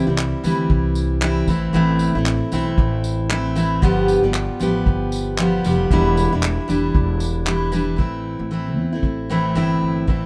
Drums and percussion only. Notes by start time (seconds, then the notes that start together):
0.18 clap
0.44 tambourine
0.70 kick
0.95 tambourine
1.22 clap
1.48 kick, tambourine
1.99 tambourine
2.26 clap
2.52 tambourine
2.78 kick
3.04 tambourine
3.30 clap
3.56 tambourine
3.83 kick
4.08 tambourine
4.34 clap
4.60 tambourine
4.86 kick
5.12 tambourine
5.38 clap
5.64 tambourine
5.91 kick
6.17 tambourine
6.43 clap
6.70 tambourine
6.95 kick
7.20 tambourine
7.46 clap
7.73 tambourine
7.99 kick
9.03 kick
10.08 kick